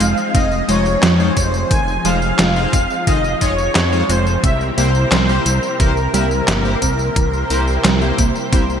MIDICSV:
0, 0, Header, 1, 7, 480
1, 0, Start_track
1, 0, Key_signature, -4, "minor"
1, 0, Tempo, 681818
1, 1203, Time_signature, 4, 2, 24, 8
1, 6195, End_track
2, 0, Start_track
2, 0, Title_t, "Supersaw synth"
2, 0, Program_c, 0, 81
2, 0, Note_on_c, 0, 77, 123
2, 241, Note_on_c, 0, 75, 108
2, 264, Note_off_c, 0, 77, 0
2, 482, Note_on_c, 0, 73, 111
2, 489, Note_off_c, 0, 75, 0
2, 959, Note_on_c, 0, 72, 101
2, 977, Note_off_c, 0, 73, 0
2, 1198, Note_on_c, 0, 80, 121
2, 1208, Note_off_c, 0, 72, 0
2, 1441, Note_on_c, 0, 77, 124
2, 1448, Note_off_c, 0, 80, 0
2, 2160, Note_on_c, 0, 75, 107
2, 2184, Note_off_c, 0, 77, 0
2, 2402, Note_on_c, 0, 73, 112
2, 2409, Note_off_c, 0, 75, 0
2, 2884, Note_on_c, 0, 72, 100
2, 2897, Note_off_c, 0, 73, 0
2, 3107, Note_off_c, 0, 72, 0
2, 3123, Note_on_c, 0, 76, 114
2, 3222, Note_off_c, 0, 76, 0
2, 3364, Note_on_c, 0, 72, 116
2, 4056, Note_off_c, 0, 72, 0
2, 4084, Note_on_c, 0, 70, 101
2, 6195, Note_off_c, 0, 70, 0
2, 6195, End_track
3, 0, Start_track
3, 0, Title_t, "Analog polysynth"
3, 0, Program_c, 1, 90
3, 243, Note_on_c, 1, 56, 81
3, 243, Note_on_c, 1, 77, 87
3, 244, Note_on_c, 1, 63, 72
3, 244, Note_on_c, 1, 65, 71
3, 320, Note_off_c, 1, 56, 0
3, 320, Note_off_c, 1, 63, 0
3, 320, Note_off_c, 1, 65, 0
3, 320, Note_off_c, 1, 77, 0
3, 483, Note_on_c, 1, 65, 77
3, 484, Note_on_c, 1, 56, 87
3, 484, Note_on_c, 1, 63, 80
3, 484, Note_on_c, 1, 75, 98
3, 560, Note_off_c, 1, 56, 0
3, 560, Note_off_c, 1, 63, 0
3, 560, Note_off_c, 1, 65, 0
3, 560, Note_off_c, 1, 75, 0
3, 844, Note_on_c, 1, 56, 82
3, 844, Note_on_c, 1, 63, 77
3, 844, Note_on_c, 1, 65, 75
3, 844, Note_on_c, 1, 72, 92
3, 920, Note_off_c, 1, 56, 0
3, 920, Note_off_c, 1, 63, 0
3, 920, Note_off_c, 1, 65, 0
3, 920, Note_off_c, 1, 72, 0
3, 1442, Note_on_c, 1, 56, 92
3, 1442, Note_on_c, 1, 65, 83
3, 1443, Note_on_c, 1, 63, 87
3, 1443, Note_on_c, 1, 72, 100
3, 1519, Note_off_c, 1, 56, 0
3, 1519, Note_off_c, 1, 65, 0
3, 1520, Note_off_c, 1, 63, 0
3, 1520, Note_off_c, 1, 72, 0
3, 1803, Note_on_c, 1, 56, 79
3, 1803, Note_on_c, 1, 65, 73
3, 1804, Note_on_c, 1, 63, 71
3, 1804, Note_on_c, 1, 72, 88
3, 1926, Note_off_c, 1, 56, 0
3, 1926, Note_off_c, 1, 63, 0
3, 1926, Note_off_c, 1, 65, 0
3, 1926, Note_off_c, 1, 72, 0
3, 2163, Note_on_c, 1, 56, 78
3, 2163, Note_on_c, 1, 63, 74
3, 2163, Note_on_c, 1, 65, 73
3, 2163, Note_on_c, 1, 77, 89
3, 2240, Note_off_c, 1, 56, 0
3, 2240, Note_off_c, 1, 63, 0
3, 2240, Note_off_c, 1, 65, 0
3, 2240, Note_off_c, 1, 77, 0
3, 2404, Note_on_c, 1, 56, 88
3, 2404, Note_on_c, 1, 63, 78
3, 2404, Note_on_c, 1, 65, 80
3, 2404, Note_on_c, 1, 75, 94
3, 2480, Note_off_c, 1, 56, 0
3, 2480, Note_off_c, 1, 63, 0
3, 2480, Note_off_c, 1, 65, 0
3, 2480, Note_off_c, 1, 75, 0
3, 2763, Note_on_c, 1, 72, 89
3, 2764, Note_on_c, 1, 56, 81
3, 2764, Note_on_c, 1, 63, 76
3, 2764, Note_on_c, 1, 65, 75
3, 2840, Note_off_c, 1, 56, 0
3, 2840, Note_off_c, 1, 63, 0
3, 2840, Note_off_c, 1, 65, 0
3, 2840, Note_off_c, 1, 72, 0
3, 3364, Note_on_c, 1, 58, 94
3, 3364, Note_on_c, 1, 64, 88
3, 3364, Note_on_c, 1, 67, 88
3, 3364, Note_on_c, 1, 72, 101
3, 3440, Note_off_c, 1, 58, 0
3, 3440, Note_off_c, 1, 64, 0
3, 3440, Note_off_c, 1, 67, 0
3, 3440, Note_off_c, 1, 72, 0
3, 3724, Note_on_c, 1, 58, 78
3, 3724, Note_on_c, 1, 64, 72
3, 3724, Note_on_c, 1, 67, 71
3, 3724, Note_on_c, 1, 72, 89
3, 3846, Note_off_c, 1, 58, 0
3, 3846, Note_off_c, 1, 64, 0
3, 3846, Note_off_c, 1, 67, 0
3, 3846, Note_off_c, 1, 72, 0
3, 4083, Note_on_c, 1, 58, 81
3, 4083, Note_on_c, 1, 64, 73
3, 4083, Note_on_c, 1, 67, 71
3, 4083, Note_on_c, 1, 72, 89
3, 4160, Note_off_c, 1, 58, 0
3, 4160, Note_off_c, 1, 64, 0
3, 4160, Note_off_c, 1, 67, 0
3, 4160, Note_off_c, 1, 72, 0
3, 4323, Note_on_c, 1, 58, 89
3, 4324, Note_on_c, 1, 64, 82
3, 4324, Note_on_c, 1, 67, 79
3, 4324, Note_on_c, 1, 76, 99
3, 4400, Note_off_c, 1, 58, 0
3, 4400, Note_off_c, 1, 64, 0
3, 4400, Note_off_c, 1, 67, 0
3, 4400, Note_off_c, 1, 76, 0
3, 4684, Note_on_c, 1, 58, 84
3, 4684, Note_on_c, 1, 64, 75
3, 4684, Note_on_c, 1, 72, 89
3, 4685, Note_on_c, 1, 67, 73
3, 4760, Note_off_c, 1, 58, 0
3, 4760, Note_off_c, 1, 64, 0
3, 4760, Note_off_c, 1, 72, 0
3, 4761, Note_off_c, 1, 67, 0
3, 5283, Note_on_c, 1, 58, 96
3, 5283, Note_on_c, 1, 64, 85
3, 5283, Note_on_c, 1, 67, 90
3, 5283, Note_on_c, 1, 72, 102
3, 5360, Note_off_c, 1, 58, 0
3, 5360, Note_off_c, 1, 64, 0
3, 5360, Note_off_c, 1, 67, 0
3, 5360, Note_off_c, 1, 72, 0
3, 5642, Note_on_c, 1, 67, 74
3, 5643, Note_on_c, 1, 58, 79
3, 5643, Note_on_c, 1, 64, 74
3, 5643, Note_on_c, 1, 72, 88
3, 5765, Note_off_c, 1, 67, 0
3, 5766, Note_off_c, 1, 58, 0
3, 5766, Note_off_c, 1, 64, 0
3, 5766, Note_off_c, 1, 72, 0
3, 6002, Note_on_c, 1, 58, 82
3, 6002, Note_on_c, 1, 67, 75
3, 6003, Note_on_c, 1, 64, 74
3, 6003, Note_on_c, 1, 72, 88
3, 6079, Note_off_c, 1, 58, 0
3, 6079, Note_off_c, 1, 67, 0
3, 6080, Note_off_c, 1, 64, 0
3, 6080, Note_off_c, 1, 72, 0
3, 6195, End_track
4, 0, Start_track
4, 0, Title_t, "Analog synth pad"
4, 0, Program_c, 2, 89
4, 0, Note_on_c, 2, 53, 86
4, 0, Note_on_c, 2, 60, 77
4, 0, Note_on_c, 2, 63, 77
4, 0, Note_on_c, 2, 68, 90
4, 0, Note_on_c, 2, 79, 73
4, 1174, Note_off_c, 2, 79, 0
4, 1204, Note_on_c, 2, 65, 79
4, 3095, Note_off_c, 2, 60, 0
4, 3096, Note_off_c, 2, 53, 0
4, 3096, Note_off_c, 2, 63, 0
4, 3096, Note_off_c, 2, 68, 0
4, 3104, Note_off_c, 2, 65, 0
4, 3124, Note_on_c, 2, 64, 75
4, 3124, Note_on_c, 2, 70, 95
4, 3125, Note_on_c, 2, 48, 84
4, 3125, Note_on_c, 2, 60, 74
4, 3125, Note_on_c, 2, 67, 78
4, 5025, Note_off_c, 2, 70, 0
4, 5038, Note_on_c, 2, 72, 95
4, 6195, Note_off_c, 2, 48, 0
4, 6195, Note_off_c, 2, 60, 0
4, 6195, Note_off_c, 2, 64, 0
4, 6195, Note_off_c, 2, 67, 0
4, 6195, Note_off_c, 2, 72, 0
4, 6195, End_track
5, 0, Start_track
5, 0, Title_t, "Synth arpeggio sound"
5, 0, Program_c, 3, 84
5, 5, Note_on_c, 3, 56, 104
5, 132, Note_off_c, 3, 56, 0
5, 243, Note_on_c, 3, 60, 88
5, 456, Note_off_c, 3, 60, 0
5, 483, Note_on_c, 3, 56, 78
5, 611, Note_off_c, 3, 56, 0
5, 723, Note_on_c, 3, 53, 102
5, 936, Note_off_c, 3, 53, 0
5, 1203, Note_on_c, 3, 51, 81
5, 1416, Note_off_c, 3, 51, 0
5, 1444, Note_on_c, 3, 53, 103
5, 1672, Note_off_c, 3, 53, 0
5, 1684, Note_on_c, 3, 56, 76
5, 1897, Note_off_c, 3, 56, 0
5, 1923, Note_on_c, 3, 60, 77
5, 2051, Note_off_c, 3, 60, 0
5, 2163, Note_on_c, 3, 51, 84
5, 2376, Note_off_c, 3, 51, 0
5, 2644, Note_on_c, 3, 53, 105
5, 2871, Note_off_c, 3, 53, 0
5, 2883, Note_on_c, 3, 56, 105
5, 3011, Note_off_c, 3, 56, 0
5, 3122, Note_on_c, 3, 60, 80
5, 3336, Note_off_c, 3, 60, 0
5, 3362, Note_on_c, 3, 58, 78
5, 3491, Note_off_c, 3, 58, 0
5, 3602, Note_on_c, 3, 55, 99
5, 3816, Note_off_c, 3, 55, 0
5, 4084, Note_on_c, 3, 52, 88
5, 4297, Note_off_c, 3, 52, 0
5, 4322, Note_on_c, 3, 55, 101
5, 4551, Note_off_c, 3, 55, 0
5, 4563, Note_on_c, 3, 58, 79
5, 4776, Note_off_c, 3, 58, 0
5, 4802, Note_on_c, 3, 60, 74
5, 4931, Note_off_c, 3, 60, 0
5, 5042, Note_on_c, 3, 52, 81
5, 5256, Note_off_c, 3, 52, 0
5, 5522, Note_on_c, 3, 55, 105
5, 5751, Note_off_c, 3, 55, 0
5, 5763, Note_on_c, 3, 58, 101
5, 5891, Note_off_c, 3, 58, 0
5, 6004, Note_on_c, 3, 60, 86
5, 6195, Note_off_c, 3, 60, 0
5, 6195, End_track
6, 0, Start_track
6, 0, Title_t, "Analog synth bass"
6, 0, Program_c, 4, 38
6, 2, Note_on_c, 4, 29, 82
6, 101, Note_off_c, 4, 29, 0
6, 243, Note_on_c, 4, 29, 90
6, 440, Note_off_c, 4, 29, 0
6, 482, Note_on_c, 4, 29, 80
6, 680, Note_off_c, 4, 29, 0
6, 723, Note_on_c, 4, 41, 100
6, 920, Note_off_c, 4, 41, 0
6, 963, Note_on_c, 4, 29, 98
6, 1160, Note_off_c, 4, 29, 0
6, 1202, Note_on_c, 4, 29, 98
6, 1399, Note_off_c, 4, 29, 0
6, 1442, Note_on_c, 4, 29, 98
6, 1639, Note_off_c, 4, 29, 0
6, 1682, Note_on_c, 4, 29, 84
6, 1880, Note_off_c, 4, 29, 0
6, 1922, Note_on_c, 4, 29, 82
6, 2021, Note_off_c, 4, 29, 0
6, 2161, Note_on_c, 4, 29, 90
6, 2359, Note_off_c, 4, 29, 0
6, 2402, Note_on_c, 4, 29, 85
6, 2600, Note_off_c, 4, 29, 0
6, 2643, Note_on_c, 4, 41, 98
6, 2840, Note_off_c, 4, 41, 0
6, 2881, Note_on_c, 4, 29, 100
6, 3079, Note_off_c, 4, 29, 0
6, 3122, Note_on_c, 4, 36, 101
6, 3320, Note_off_c, 4, 36, 0
6, 3362, Note_on_c, 4, 36, 98
6, 3559, Note_off_c, 4, 36, 0
6, 3601, Note_on_c, 4, 36, 84
6, 3799, Note_off_c, 4, 36, 0
6, 3841, Note_on_c, 4, 36, 82
6, 3941, Note_off_c, 4, 36, 0
6, 4081, Note_on_c, 4, 36, 95
6, 4279, Note_off_c, 4, 36, 0
6, 4320, Note_on_c, 4, 36, 86
6, 4518, Note_off_c, 4, 36, 0
6, 4561, Note_on_c, 4, 31, 103
6, 4759, Note_off_c, 4, 31, 0
6, 4801, Note_on_c, 4, 36, 94
6, 4999, Note_off_c, 4, 36, 0
6, 5041, Note_on_c, 4, 36, 102
6, 5239, Note_off_c, 4, 36, 0
6, 5282, Note_on_c, 4, 36, 101
6, 5479, Note_off_c, 4, 36, 0
6, 5522, Note_on_c, 4, 36, 88
6, 5720, Note_off_c, 4, 36, 0
6, 5761, Note_on_c, 4, 36, 85
6, 5861, Note_off_c, 4, 36, 0
6, 6002, Note_on_c, 4, 36, 91
6, 6195, Note_off_c, 4, 36, 0
6, 6195, End_track
7, 0, Start_track
7, 0, Title_t, "Drums"
7, 3, Note_on_c, 9, 42, 67
7, 3, Note_on_c, 9, 54, 72
7, 73, Note_off_c, 9, 42, 0
7, 73, Note_off_c, 9, 54, 0
7, 123, Note_on_c, 9, 54, 31
7, 193, Note_off_c, 9, 54, 0
7, 243, Note_on_c, 9, 36, 114
7, 244, Note_on_c, 9, 42, 90
7, 244, Note_on_c, 9, 54, 39
7, 314, Note_off_c, 9, 36, 0
7, 314, Note_off_c, 9, 42, 0
7, 314, Note_off_c, 9, 54, 0
7, 363, Note_on_c, 9, 54, 20
7, 433, Note_off_c, 9, 54, 0
7, 483, Note_on_c, 9, 42, 64
7, 483, Note_on_c, 9, 54, 71
7, 554, Note_off_c, 9, 42, 0
7, 554, Note_off_c, 9, 54, 0
7, 602, Note_on_c, 9, 54, 30
7, 673, Note_off_c, 9, 54, 0
7, 723, Note_on_c, 9, 38, 125
7, 723, Note_on_c, 9, 39, 92
7, 723, Note_on_c, 9, 42, 91
7, 723, Note_on_c, 9, 54, 40
7, 794, Note_off_c, 9, 38, 0
7, 794, Note_off_c, 9, 39, 0
7, 794, Note_off_c, 9, 42, 0
7, 794, Note_off_c, 9, 54, 0
7, 843, Note_on_c, 9, 54, 20
7, 913, Note_off_c, 9, 54, 0
7, 962, Note_on_c, 9, 42, 62
7, 962, Note_on_c, 9, 54, 73
7, 963, Note_on_c, 9, 36, 59
7, 1032, Note_off_c, 9, 42, 0
7, 1032, Note_off_c, 9, 54, 0
7, 1033, Note_off_c, 9, 36, 0
7, 1082, Note_on_c, 9, 54, 32
7, 1152, Note_off_c, 9, 54, 0
7, 1202, Note_on_c, 9, 42, 92
7, 1202, Note_on_c, 9, 54, 41
7, 1203, Note_on_c, 9, 36, 118
7, 1273, Note_off_c, 9, 36, 0
7, 1273, Note_off_c, 9, 42, 0
7, 1273, Note_off_c, 9, 54, 0
7, 1322, Note_on_c, 9, 54, 21
7, 1392, Note_off_c, 9, 54, 0
7, 1442, Note_on_c, 9, 42, 60
7, 1442, Note_on_c, 9, 54, 70
7, 1513, Note_off_c, 9, 42, 0
7, 1513, Note_off_c, 9, 54, 0
7, 1562, Note_on_c, 9, 54, 31
7, 1632, Note_off_c, 9, 54, 0
7, 1682, Note_on_c, 9, 38, 116
7, 1682, Note_on_c, 9, 39, 94
7, 1682, Note_on_c, 9, 42, 86
7, 1682, Note_on_c, 9, 54, 40
7, 1752, Note_off_c, 9, 38, 0
7, 1752, Note_off_c, 9, 39, 0
7, 1752, Note_off_c, 9, 42, 0
7, 1752, Note_off_c, 9, 54, 0
7, 1803, Note_on_c, 9, 54, 21
7, 1873, Note_off_c, 9, 54, 0
7, 1923, Note_on_c, 9, 36, 101
7, 1923, Note_on_c, 9, 42, 66
7, 1923, Note_on_c, 9, 54, 76
7, 1993, Note_off_c, 9, 36, 0
7, 1993, Note_off_c, 9, 42, 0
7, 1993, Note_off_c, 9, 54, 0
7, 2043, Note_on_c, 9, 54, 30
7, 2113, Note_off_c, 9, 54, 0
7, 2163, Note_on_c, 9, 36, 113
7, 2163, Note_on_c, 9, 42, 90
7, 2163, Note_on_c, 9, 54, 43
7, 2233, Note_off_c, 9, 36, 0
7, 2233, Note_off_c, 9, 42, 0
7, 2233, Note_off_c, 9, 54, 0
7, 2282, Note_on_c, 9, 54, 21
7, 2352, Note_off_c, 9, 54, 0
7, 2402, Note_on_c, 9, 42, 63
7, 2402, Note_on_c, 9, 54, 74
7, 2403, Note_on_c, 9, 36, 58
7, 2472, Note_off_c, 9, 42, 0
7, 2472, Note_off_c, 9, 54, 0
7, 2473, Note_off_c, 9, 36, 0
7, 2523, Note_on_c, 9, 54, 31
7, 2593, Note_off_c, 9, 54, 0
7, 2642, Note_on_c, 9, 38, 116
7, 2642, Note_on_c, 9, 39, 93
7, 2642, Note_on_c, 9, 42, 88
7, 2642, Note_on_c, 9, 54, 40
7, 2712, Note_off_c, 9, 38, 0
7, 2712, Note_off_c, 9, 39, 0
7, 2712, Note_off_c, 9, 42, 0
7, 2712, Note_off_c, 9, 54, 0
7, 2763, Note_on_c, 9, 54, 21
7, 2833, Note_off_c, 9, 54, 0
7, 2883, Note_on_c, 9, 42, 64
7, 2883, Note_on_c, 9, 54, 74
7, 2953, Note_off_c, 9, 42, 0
7, 2953, Note_off_c, 9, 54, 0
7, 3002, Note_on_c, 9, 54, 31
7, 3073, Note_off_c, 9, 54, 0
7, 3122, Note_on_c, 9, 36, 114
7, 3123, Note_on_c, 9, 42, 95
7, 3123, Note_on_c, 9, 54, 44
7, 3193, Note_off_c, 9, 36, 0
7, 3194, Note_off_c, 9, 42, 0
7, 3194, Note_off_c, 9, 54, 0
7, 3243, Note_on_c, 9, 54, 21
7, 3313, Note_off_c, 9, 54, 0
7, 3364, Note_on_c, 9, 42, 61
7, 3364, Note_on_c, 9, 54, 70
7, 3434, Note_off_c, 9, 42, 0
7, 3434, Note_off_c, 9, 54, 0
7, 3483, Note_on_c, 9, 54, 31
7, 3554, Note_off_c, 9, 54, 0
7, 3603, Note_on_c, 9, 38, 118
7, 3603, Note_on_c, 9, 39, 101
7, 3603, Note_on_c, 9, 42, 89
7, 3603, Note_on_c, 9, 54, 42
7, 3674, Note_off_c, 9, 38, 0
7, 3674, Note_off_c, 9, 39, 0
7, 3674, Note_off_c, 9, 42, 0
7, 3674, Note_off_c, 9, 54, 0
7, 3723, Note_on_c, 9, 54, 22
7, 3794, Note_off_c, 9, 54, 0
7, 3843, Note_on_c, 9, 42, 67
7, 3843, Note_on_c, 9, 54, 76
7, 3914, Note_off_c, 9, 42, 0
7, 3914, Note_off_c, 9, 54, 0
7, 3963, Note_on_c, 9, 54, 30
7, 4033, Note_off_c, 9, 54, 0
7, 4082, Note_on_c, 9, 36, 113
7, 4082, Note_on_c, 9, 42, 89
7, 4082, Note_on_c, 9, 54, 40
7, 4152, Note_off_c, 9, 36, 0
7, 4153, Note_off_c, 9, 42, 0
7, 4153, Note_off_c, 9, 54, 0
7, 4203, Note_on_c, 9, 54, 22
7, 4274, Note_off_c, 9, 54, 0
7, 4323, Note_on_c, 9, 42, 65
7, 4323, Note_on_c, 9, 54, 76
7, 4394, Note_off_c, 9, 42, 0
7, 4394, Note_off_c, 9, 54, 0
7, 4443, Note_on_c, 9, 54, 32
7, 4513, Note_off_c, 9, 54, 0
7, 4562, Note_on_c, 9, 38, 113
7, 4562, Note_on_c, 9, 39, 101
7, 4562, Note_on_c, 9, 42, 92
7, 4562, Note_on_c, 9, 54, 43
7, 4632, Note_off_c, 9, 38, 0
7, 4632, Note_off_c, 9, 39, 0
7, 4632, Note_off_c, 9, 42, 0
7, 4632, Note_off_c, 9, 54, 0
7, 4682, Note_on_c, 9, 54, 21
7, 4752, Note_off_c, 9, 54, 0
7, 4801, Note_on_c, 9, 42, 64
7, 4801, Note_on_c, 9, 54, 76
7, 4802, Note_on_c, 9, 36, 54
7, 4872, Note_off_c, 9, 36, 0
7, 4872, Note_off_c, 9, 42, 0
7, 4872, Note_off_c, 9, 54, 0
7, 4922, Note_on_c, 9, 54, 32
7, 4993, Note_off_c, 9, 54, 0
7, 5042, Note_on_c, 9, 36, 119
7, 5043, Note_on_c, 9, 42, 99
7, 5043, Note_on_c, 9, 54, 42
7, 5112, Note_off_c, 9, 36, 0
7, 5113, Note_off_c, 9, 42, 0
7, 5113, Note_off_c, 9, 54, 0
7, 5163, Note_on_c, 9, 54, 21
7, 5233, Note_off_c, 9, 54, 0
7, 5282, Note_on_c, 9, 42, 67
7, 5282, Note_on_c, 9, 54, 70
7, 5353, Note_off_c, 9, 42, 0
7, 5353, Note_off_c, 9, 54, 0
7, 5402, Note_on_c, 9, 54, 29
7, 5473, Note_off_c, 9, 54, 0
7, 5523, Note_on_c, 9, 38, 117
7, 5523, Note_on_c, 9, 39, 103
7, 5523, Note_on_c, 9, 42, 95
7, 5523, Note_on_c, 9, 54, 41
7, 5593, Note_off_c, 9, 38, 0
7, 5593, Note_off_c, 9, 39, 0
7, 5593, Note_off_c, 9, 42, 0
7, 5593, Note_off_c, 9, 54, 0
7, 5642, Note_on_c, 9, 54, 21
7, 5712, Note_off_c, 9, 54, 0
7, 5762, Note_on_c, 9, 36, 102
7, 5762, Note_on_c, 9, 42, 69
7, 5762, Note_on_c, 9, 54, 74
7, 5832, Note_off_c, 9, 42, 0
7, 5832, Note_off_c, 9, 54, 0
7, 5833, Note_off_c, 9, 36, 0
7, 5882, Note_on_c, 9, 54, 31
7, 5952, Note_off_c, 9, 54, 0
7, 6002, Note_on_c, 9, 36, 116
7, 6002, Note_on_c, 9, 42, 92
7, 6002, Note_on_c, 9, 54, 41
7, 6072, Note_off_c, 9, 36, 0
7, 6073, Note_off_c, 9, 42, 0
7, 6073, Note_off_c, 9, 54, 0
7, 6123, Note_on_c, 9, 54, 21
7, 6193, Note_off_c, 9, 54, 0
7, 6195, End_track
0, 0, End_of_file